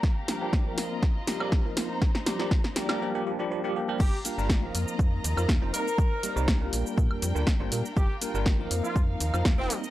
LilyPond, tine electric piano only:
\new Staff \with { instrumentName = "Tine electric piano" } { \time 4/4 \key f \mixolydian \tempo 4 = 121 r8 <f g bes d' g'>16 <f g bes d' g'>8 <f bes c' d' bes'>8. r8 <f g bes d' g'>16 <f g bes d' g'>8 <f bes c' ees' bes'>8. | r8 <f g bes d' g'>16 <f g bes d' g'>16 r8 <f g bes d' g'>16 <f g bes d' g'>16 <f g bes d' g'>16 <f g bes d' g'>16 <f g bes d' g'>16 <f g bes d' g'>16 <f g bes d' g'>16 <f g bes d' g'>16 <f g bes d' g'>16 <f g bes d' g'>16 | r8 <g bes d' f' bes'>16 <g bes d' f' bes'>8 <f bes c' ees' bes'>4. <f bes c' ees' bes'>16 r16 <f bes c' ees' c''>16 <g bes c' ees' bes'>16 r16 | r8 <g bes c' ees' bes'>16 <g bes c' ees' bes'>8 <g bes d' f' bes'>4. <g bes d' f' bes'>16 r16 <g bes d' f' c''>16 <g bes d' f' bes'>16 r16 |
r8 <g bes d' f' bes'>16 <g bes d' f' bes'>8 <f bes c' ees' bes'>4. <f bes c' ees' bes'>16 r16 <f bes c' ees' c''>16 <g bes c' ees' bes'>16 r16 | }